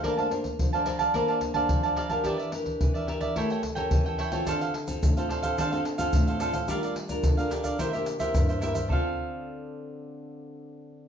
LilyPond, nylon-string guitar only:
\new Staff \with { instrumentName = "Nylon-string guitar" } { \time 4/4 \key d \minor \tempo 4 = 108 << { <d' a' c''>16 <d' a' c''>16 <d' a' c''>16 r16 <d' a' c''>16 <d' a' c''>16 <d' a' c''>16 r16 <d' a' c''>8. <d' a' c''>4 <d' g' bes'>16~ | <d' g' bes'>16 r16 <d' g' bes'>4 <d' g' bes'>8 <cis' g' bes'>8 r16 <cis' g' bes'>4 <c' f' a'>16~ | <c' f' a'>8 r16 <c' f' a'>8 <c' f' a'>4 <c' f' a'>8 <c' f' a'>8. <c' f' a'>16 r16 | <d' f' bes'>8 r16 <d' f' bes'>8 <d' f' bes'>8. <bes e' g'>16 <bes e' g'>8 <bes e' g'>8. <bes e' g'>16 r16 |
<d c' f' a'>1 | } \\ { bes4 f4 bes4 f4 | e4 e4 a4 e4 | d4 a,4 d4 a,4 | g4 d4 c4 g,4 |
r1 | } >> }